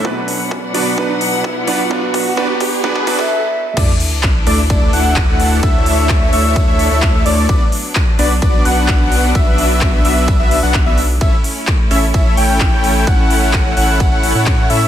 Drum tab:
CC |----------------|----------------|x---------------|----------------|
RD |----------------|----------------|x---x---x---x---|x---x---x---x---|
HH |--o---o---o---o-|--o---o---o-----|--o---o---o---o-|--o---o---o---o-|
CP |----------------|----------------|----x-------x---|----x-------x---|
BD |o---o---o---o---|o-o-o-o-oooo----|o---o---o---o---|o---o---o---o---|

CC |----------------|----------------|----------------|----------------|
RD |x---x---x---x---|x---x---x---x---|x---x---x---x---|x---x---x---x---|
HH |--o---o---o---o-|--o---o---o---o-|--o---o---o---o-|--o---o---o---o-|
CP |----x-------x---|----x-------x---|----x-------x---|----x-------x---|
BD |o---o---o---o---|o---o---o---o---|o---o---o---o---|o---o---o---o---|